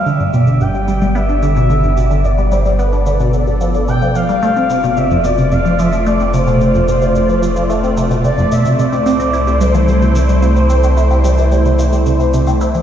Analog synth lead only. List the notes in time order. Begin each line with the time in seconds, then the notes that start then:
0.06 E5
0.61 G5
1.16 E5
2.25 D5
2.52 C5
2.79 B4
3.88 G5
4.16 F5
4.97 E5
5.25 D5
5.52 F5
5.79 E5
6.06 D5
6.33 C5
8.24 D5
8.52 E5
8.72 E5
8.79 D5
9.61 C5